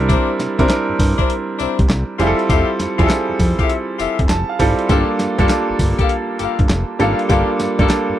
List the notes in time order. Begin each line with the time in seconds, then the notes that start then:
Already playing: C2 G3 C4 D4 E4 A#4 E5
0.09 C4 D4 E4 A#4 C5, kick, closed hi-hat, tambourine
0.40 C3, snare, closed hi-hat, tambourine
0.58 C3 G3 C4 D4 E4 A#4 C5, kick, closed hi-hat
0.69 snare, clap, closed hi-hat, tambourine
0.89 G2
0.99 G2, kick, open hi-hat, tambourine
1.18 C4 D4 E4 A#4 C5, kick, closed hi-hat
1.30 closed hi-hat
1.59 C2 C4 D4 E4 A#4 C5, closed hi-hat, tambourine
1.79 C2, kick, closed hi-hat
1.89 C2, snare, clap, closed hi-hat, tambourine
2.19 F1 G3 C4 E4 F4 G4 G#4 A4 E5, closed hi-hat, tambourine
2.27 A4
2.39 closed hi-hat
2.49 F1 E4 F4 G4 A4 E5, kick, closed hi-hat, tambourine
2.79 F2, snare, closed hi-hat, tambourine
2.98 F2 G3 C4 E4 F4 G4 G#4 A4 E5, kick, closed hi-hat
3.06 A4, snare, clap, closed hi-hat, tambourine
3.29 F2
3.39 F2, kick, open hi-hat, tambourine
3.59 E4 F4 G4 A4 E5, kick, closed hi-hat
3.70 closed hi-hat
3.99 F1 E4 F4 G4 A4 E5, closed hi-hat, tambourine
4.19 F1, kick, closed hi-hat
4.29 F1 A5, snare, clap, closed hi-hat, tambourine
4.49 F5
4.59 G#1 G3 C4 E4 F4 A4 D5, kick, open hi-hat, tambourine
4.79 closed hi-hat
4.89 G1 G3 A#3 D4 F4 G4 A4 A#4 F5, kick, closed hi-hat, tambourine
5.19 G2, snare, closed hi-hat, tambourine
5.38 G2 G3 A#3 D4 F4 G4 A4 A#4 F5, kick, closed hi-hat
5.49 snare, clap, closed hi-hat, tambourine
5.69 G1
5.79 G1, kick, open hi-hat, tambourine
5.99 F4 G4 A4 A#4 F5, kick, closed hi-hat
6.09 closed hi-hat
6.39 G1 F4 G4 A4 A#4 F5, closed hi-hat, tambourine
6.59 G1, kick, closed hi-hat
6.69 F1, snare, clap, closed hi-hat, tambourine
6.99 G#1 G3 A#3 D4 F4 G4 A4 A#4 F5, closed hi-hat, tambourine
7.19 closed hi-hat
7.29 G1 G3 A#3 D4 F4 G4 A4 A#4 F5, kick, closed hi-hat, tambourine
7.59 G2, snare, closed hi-hat, tambourine
7.79 G2 G3 A#3 D4 F4 G4 A4 A#4 F5, kick, closed hi-hat
7.89 snare, clap, closed hi-hat, tambourine
8.09 G2